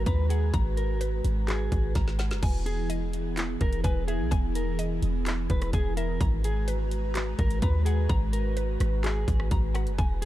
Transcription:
Already playing: analog synth pad G#3 F#4 B4 A#5, synth pluck F#4 B4
0.06 808-style bass D#2, clean electric guitar B4, synth pluck A#5, kick, closed hi-hat
0.30 clean electric guitar G#4, synth pluck F#5, closed hi-hat
0.54 808-style bass G#1, synth pluck A#5, kick, closed hi-hat
0.77 clean electric guitar A#4, closed hi-hat
1.01 synth pluck B4, closed hi-hat
1.25 808-style bass G#1, closed hi-hat
1.48 synth pluck F#4, clean electric guitar G#4, clap, closed hi-hat
1.72 808-style bass G#1, kick, closed hi-hat
1.95 808-style bass G#1, synth pluck A#5, kick, snare, closed hi-hat
2.08 snare
2.19 synth pluck F#5, snare, closed hi-hat
2.31 808-style bass F#1, snare, closed hi-hat
2.43 808-style bass E1, analog synth pad E3 B3 E4 G#4, synth pluck G#5, kick, closed hi-hat, crash
2.66 clean electric guitar G#4, closed hi-hat
2.90 synth pluck D#5, closed hi-hat
3.13 closed hi-hat
3.37 synth pluck E4, clap, closed hi-hat
3.61 808-style bass E1, clean electric guitar A#4, kick, closed hi-hat
3.73 closed hi-hat
3.84 808-style bass E1, clean electric guitar B4, synth pluck G#5, kick, closed hi-hat
4.08 clean electric guitar G#4, synth pluck E5, closed hi-hat
4.20 808-style bass B1
4.31 808-style bass E1, synth pluck G#5, kick, closed hi-hat
4.55 clean electric guitar A#4, closed hi-hat
4.79 synth pluck D#5, closed hi-hat
5.02 808-style bass E1, closed hi-hat
5.26 synth pluck E4, clap, closed hi-hat
5.50 808-style bass E1, clean electric guitar B4, kick, closed hi-hat
5.62 cross-stick, closed hi-hat
5.73 808-style bass E1, clean electric guitar G#4, synth pluck G#5, kick, closed hi-hat
5.97 clean electric guitar A#4, synth pluck E5, closed hi-hat
6.21 808-style bass G#1, analog synth pad G#3 F#4 B4 A#5, synth pluck A#5, kick, closed hi-hat
6.44 clean electric guitar G#4, closed hi-hat
6.68 synth pluck B4, closed hi-hat
6.91 closed hi-hat
7.15 synth pluck F#4, clap, closed hi-hat
7.39 808-style bass G#1, clean electric guitar A#4, kick, closed hi-hat
7.51 closed hi-hat
7.62 808-style bass D#2, clean electric guitar B4, synth pluck A#5, kick, closed hi-hat
7.85 clean electric guitar G#4, synth pluck F#5, closed hi-hat
8.09 808-style bass G#1, synth pluck A#5, kick, closed hi-hat
8.33 clean electric guitar A#4, closed hi-hat
8.57 synth pluck B4, closed hi-hat
8.80 808-style bass G#1, cross-stick, closed hi-hat
9.04 synth pluck F#4, clean electric guitar G#4, clap, closed hi-hat
9.28 808-style bass G#1, kick, closed hi-hat
9.40 cross-stick
9.51 808-style bass G#1, synth pluck A#5, kick, closed hi-hat
9.74 synth pluck F#5, cross-stick, closed hi-hat
9.87 808-style bass F#1, closed hi-hat
9.98 808-style bass E1, analog synth pad E3 B3 E4 G#4, synth pluck G#5, kick, closed hi-hat
10.22 clean electric guitar G#4

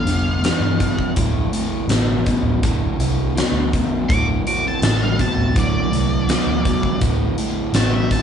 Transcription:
Already playing: lead electric guitar B3 F5
0.06 picked electric bass F1, overdriven electric guitar G2 D3, closed hi-hat
0.43 overdriven electric guitar G2 E3, snare, closed hi-hat
0.60 picked electric bass G2
0.79 overdriven electric guitar G2 E3, kick, closed hi-hat
0.99 kick
1.16 picked electric bass D1, overdriven electric guitar D2 A2, kick, closed hi-hat
1.52 overdriven electric guitar D2 A2, closed hi-hat
1.88 picked electric bass A1, overdriven electric guitar D2 B2, snare, closed hi-hat
2.26 overdriven electric guitar D2 B2, kick, closed hi-hat
2.43 picked electric bass D1
2.63 overdriven electric guitar D2 A2, kick, closed hi-hat
2.99 picked electric bass C2, overdriven electric guitar D2 A2, closed hi-hat
3.35 overdriven electric guitar D2 B2, snare, closed hi-hat
3.52 picked electric bass D2
3.73 overdriven electric guitar D2 B2, kick, closed hi-hat
4.08 picked electric bass D1, overdriven electric guitar D2 A2, lead electric guitar F#4 D6, kick, closed hi-hat
4.45 overdriven electric guitar D2 A2, lead electric guitar F#4 D6, closed hi-hat
4.65 lead electric guitar C4 A5
4.82 picked electric bass A1, overdriven electric guitar D2 B2, lead electric guitar C4 A5, snare, closed hi-hat
5.02 lead electric guitar G3 F5
5.19 overdriven electric guitar D2 B2, lead electric guitar C4 A5, kick, closed hi-hat
5.36 picked electric bass D1
5.54 overdriven electric guitar D2 A2, lead electric guitar F#3, kick, closed hi-hat
5.59 lead electric guitar D5
5.91 picked electric bass C2, overdriven electric guitar D2 A2, closed hi-hat
6.27 overdriven electric guitar D2 B2, snare, closed hi-hat
6.47 picked electric bass D2
6.65 overdriven electric guitar D2 B2, kick, closed hi-hat
6.83 kick
7.01 picked electric bass D1, overdriven electric guitar D2 A2, kick, closed hi-hat
7.38 overdriven electric guitar D2 A2, closed hi-hat
7.73 picked electric bass A1, overdriven electric guitar D2 B2, lead electric guitar C4 A5, snare, closed hi-hat
7.93 lead electric guitar G3 E5
8.11 overdriven electric guitar D2 B2, lead electric guitar C4 A5, kick, closed hi-hat

